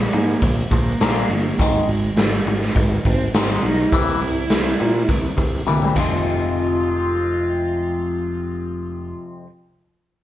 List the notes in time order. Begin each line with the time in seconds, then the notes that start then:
Already playing: G#3
0.12 G#2 A#2 F3 A#3, open hi-hat
0.42 A#1 A#2 F3, kick, open hi-hat
0.71 A#1 A#2 F3 A#3, kick, open hi-hat
1.01 A#1 A#2 F3 A#3, snare, open hi-hat
1.29 G1 A#2 F3, open hi-hat
1.59 G#1 G#2 D#3 G#3, kick, open hi-hat
1.63 G#3
1.88 G#1 G#2 D#3, open hi-hat
2.17 G#1 G#2 D#3, snare, open hi-hat
2.47 G#1 G#2 D#3, open hi-hat
2.61 snare
2.75 G#1 G#2 D#3, kick, open hi-hat
2.80 G#3
3.05 G#1 G#2 D#3 C4, kick, open hi-hat
3.34 G#1 G#2 D#3 G#3 C4, snare, open hi-hat
3.62 B1 G#2 D#3 D#4, open hi-hat
3.92 C2 C3 E3 G3 E4, kick, open hi-hat
4.21 C2 C3 E3, open hi-hat
4.50 C2 C3 E3, snare, open hi-hat
4.80 A#2 C3 E3, open hi-hat
5.08 C2 C3 E3, kick, open hi-hat
5.37 C2 C3 E3, kick, open hi-hat
5.67 C2 C3 E3 G3, high tom
5.82 mid tom
5.93 F1 F2 C3 F4, kick, ride
5.97 F3 G#3 C4 F4